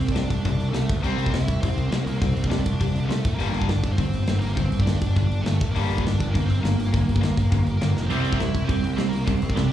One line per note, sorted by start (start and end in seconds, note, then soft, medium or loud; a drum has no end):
0.00 0.12 C2 medium
0.00 0.12 C4 medium
0.00 0.11 C5 medium
0.00 open hi-hat medium
0.08 0.22 D5 medium
0.08 kick medium
0.13 0.27 C3 medium
0.13 0.28 C3 medium
0.13 0.29 G3 medium
0.13 0.25 D4 medium
0.13 snare loud
0.13 open hi-hat medium
0.24 0.69 D4 medium
0.24 0.68 D5 medium
0.30 0.42 C2 medium
0.30 kick medium
0.30 open hi-hat medium
0.45 0.57 C2 medium
0.45 0.58 C3 medium
0.45 0.59 G3 medium
0.45 kick medium
0.45 open hi-hat medium
0.58 0.71 C2 medium
0.58 open hi-hat soft
0.71 0.86 C2 medium
0.71 0.87 C3 medium
0.71 0.87 G3 medium
0.71 1.01 A3 medium
0.71 1.03 A4 medium
0.71 snare loud
0.71 open hi-hat medium
0.89 1.03 D2 medium
0.89 kick loud
0.89 open hi-hat medium
1.00 1.16 C2 medium
1.00 1.32 C3 medium
1.00 1.32 G3 medium
1.00 1.30 C4 medium
1.00 1.32 C4 loud
1.00 1.32 C5 medium
1.00 open hi-hat medium
1.18 1.30 C2 medium
1.18 open hi-hat medium
1.26 kick medium
1.31 1.45 C2 medium
1.31 1.46 C3 medium
1.31 1.46 G3 medium
1.31 1.60 E4 medium
1.31 1.59 E5 medium
1.31 snare loud
1.31 open hi-hat medium
1.48 1.61 C2 medium
1.48 kick medium
1.48 open hi-hat medium
1.61 1.75 C2 medium
1.61 1.76 C3 medium
1.61 1.76 G3 medium
1.61 1.90 C4 medium
1.61 1.88 C5 medium
1.61 kick medium
1.61 open hi-hat medium
1.76 1.89 C2 medium
1.76 open hi-hat soft
1.89 2.04 C2 medium
1.89 2.05 C3 medium
1.89 2.05 C4 medium
1.89 2.04 C5 medium
1.89 snare loud
1.89 open hi-hat medium
1.93 2.06 G3 medium
2.04 2.19 C2 medium
2.04 2.21 A#3 medium
2.04 2.18 A#4 medium
2.04 open hi-hat medium
2.18 2.34 C2 medium
2.18 2.35 C3 medium
2.18 2.35 G3 medium
2.18 2.48 C4 medium
2.18 2.47 C5 medium
2.18 kick loud
2.18 open hi-hat medium
2.34 2.47 C2 medium
2.34 open hi-hat medium
2.44 2.58 D5 medium
2.44 kick medium
2.49 2.62 C3 medium
2.49 2.64 C3 medium
2.49 2.64 G3 medium
2.49 2.62 D4 medium
2.49 snare loud
2.49 open hi-hat medium
2.60 3.06 D4 medium
2.60 3.08 D5 medium
2.66 2.78 C2 medium
2.66 kick medium
2.66 open hi-hat medium
2.80 2.93 C2 medium
2.80 2.93 C3 medium
2.80 2.94 G3 medium
2.80 kick loud
2.80 open hi-hat medium
2.95 3.07 C2 medium
2.95 open hi-hat soft
3.05 3.36 A3 medium
3.05 3.34 A4 medium
3.09 3.22 C2 medium
3.09 3.23 C3 medium
3.09 3.23 G3 medium
3.09 snare loud
3.09 open hi-hat medium
3.25 3.39 A#1 medium
3.25 kick loud
3.25 open hi-hat medium
3.34 3.66 A#3 medium
3.34 3.67 A#4 medium
3.39 3.51 G1 medium
3.39 3.68 G2 medium
3.39 3.68 D3 medium
3.39 3.68 G3 loud
3.39 open hi-hat medium
3.53 3.66 G1 medium
3.53 open hi-hat soft
3.62 3.92 D5 medium
3.62 kick medium
3.67 3.81 G1 medium
3.67 3.82 G2 medium
3.67 3.82 D3 medium
3.67 3.95 D4 medium
3.67 snare loud
3.67 open hi-hat medium
3.84 3.96 G1 medium
3.84 kick medium
3.84 open hi-hat medium
3.93 4.24 C4 medium
3.93 4.22 C5 medium
3.98 4.10 G1 medium
3.98 4.11 G2 medium
3.98 4.12 D3 medium
3.98 kick medium
3.98 open hi-hat medium
4.12 4.25 G1 medium
4.12 open hi-hat medium
4.23 4.41 C4 medium
4.23 4.41 C5 medium
4.27 4.40 G1 medium
4.27 4.41 G2 medium
4.27 4.41 D3 medium
4.27 snare medium
4.27 open hi-hat medium
4.39 4.54 G1 medium
4.39 4.54 A#3 medium
4.39 4.56 A#4 medium
4.39 open hi-hat medium
4.52 4.83 C4 medium
4.52 4.81 C5 medium
4.56 4.69 G1 medium
4.56 4.70 G2 medium
4.56 4.70 D3 medium
4.56 kick loud
4.56 open hi-hat medium
4.71 4.84 G1 medium
4.71 open hi-hat medium
4.80 4.96 D5 loud
4.80 kick medium
4.85 4.98 G2 medium
4.85 5.00 G2 medium
4.85 5.00 D3 medium
4.85 4.99 D4 medium
4.85 snare loud
4.85 open hi-hat medium
4.98 5.42 D4 medium
4.98 5.45 D5 medium
5.02 5.14 G1 medium
5.02 kick medium
5.02 open hi-hat medium
5.16 5.28 G1 medium
5.16 5.29 G2 medium
5.16 5.29 D3 medium
5.16 kick medium
5.16 open hi-hat medium
5.29 5.42 G1 medium
5.29 open hi-hat medium
5.41 5.57 G1 medium
5.41 5.73 A3 medium
5.41 5.71 A4 medium
5.46 5.59 G2 medium
5.46 5.59 D3 medium
5.46 snare medium
5.46 open hi-hat medium
5.61 5.73 A1 medium
5.61 kick loud
5.61 open hi-hat medium
5.71 5.86 G1 medium
5.71 6.03 A#4 medium
5.75 6.03 G2 medium
5.75 6.03 D3 loud
5.75 6.04 G3 loud
5.75 6.03 A#3 medium
5.75 open hi-hat medium
5.89 6.02 G1 medium
5.89 open hi-hat soft
5.98 6.30 D5 medium
5.98 kick medium
6.04 6.17 G1 medium
6.04 6.17 G2 medium
6.04 6.18 D3 medium
6.04 6.32 D4 medium
6.04 snare medium
6.04 open hi-hat medium
6.20 6.31 G1 medium
6.20 kick medium
6.20 open hi-hat medium
6.31 6.47 G2 medium
6.31 6.47 D3 medium
6.31 6.47 A#3 medium
6.31 6.46 A#4 medium
6.35 6.47 G1 medium
6.35 kick loud
6.35 open hi-hat medium
6.46 6.60 G1 medium
6.46 6.63 C4 medium
6.46 6.60 C5 medium
6.50 open hi-hat medium
6.60 6.74 G1 medium
6.60 6.76 G2 medium
6.60 6.76 D3 medium
6.60 7.77 A#3 medium
6.60 7.76 A#4 medium
6.65 snare medium
6.65 open hi-hat medium
6.77 6.90 G1 medium
6.77 open hi-hat medium
6.93 7.05 G1 medium
6.93 7.06 G2 medium
6.93 7.06 D3 medium
6.93 kick loud
6.93 open hi-hat medium
7.06 7.19 G1 medium
7.06 open hi-hat medium
7.16 kick medium
7.21 7.33 G2 medium
7.21 7.35 G2 medium
7.21 7.35 D3 medium
7.21 snare loud
7.21 open hi-hat medium
7.37 7.49 G1 medium
7.37 kick medium
7.37 open hi-hat medium
7.52 7.64 G1 medium
7.52 7.65 G2 medium
7.52 7.65 D3 medium
7.52 kick medium
7.52 open hi-hat medium
7.66 7.78 G1 medium
7.66 open hi-hat medium
7.77 8.06 A#4 medium
7.81 7.93 G1 medium
7.81 7.95 G2 medium
7.81 7.94 D3 medium
7.81 8.08 A#3 medium
7.81 snare loud
7.81 open hi-hat medium
7.95 8.07 F1 medium
7.95 snare medium
8.06 8.22 C2 medium
8.06 8.37 C4 medium
8.06 8.38 C5 medium
8.06 open hi-hat medium
8.11 8.38 C3 medium
8.11 8.39 G3 medium
8.11 8.39 C4 medium
8.25 8.37 C2 medium
8.25 open hi-hat soft
8.33 8.64 E5 loud
8.33 kick medium
8.37 8.52 C2 medium
8.37 8.53 C3 medium
8.37 8.53 G3 medium
8.37 8.65 E4 medium
8.37 snare loud
8.37 open hi-hat medium
8.54 8.66 C2 medium
8.54 kick medium
8.54 open hi-hat medium
8.65 8.81 C2 medium
8.65 8.96 C4 medium
8.65 8.92 C5 medium
8.69 8.82 C3 medium
8.69 8.82 G3 medium
8.69 kick loud
8.69 open hi-hat medium
8.83 8.95 C2 medium
8.83 open hi-hat medium
8.93 9.10 C2 medium
8.93 9.11 C4 medium
8.93 9.08 C5 medium
8.97 9.11 C3 medium
8.97 9.11 G3 medium
8.97 snare medium
8.97 open hi-hat medium
9.08 9.26 A#3 medium
9.08 9.24 A#4 medium
9.13 9.25 C2 medium
9.13 open hi-hat medium
9.24 9.40 C2 medium
9.24 9.41 C3 medium
9.24 9.41 G3 medium
9.24 9.55 C4 medium
9.24 9.52 C5 medium
9.24 kick loud
9.24 open hi-hat medium
9.42 9.54 C2 medium
9.42 open hi-hat medium
9.50 9.66 D5 medium
9.50 kick medium
9.56 9.70 C3 medium
9.56 9.70 G3 medium
9.56 9.69 D4 medium
9.56 snare loud
9.56 open hi-hat medium
9.67 9.72 D5 medium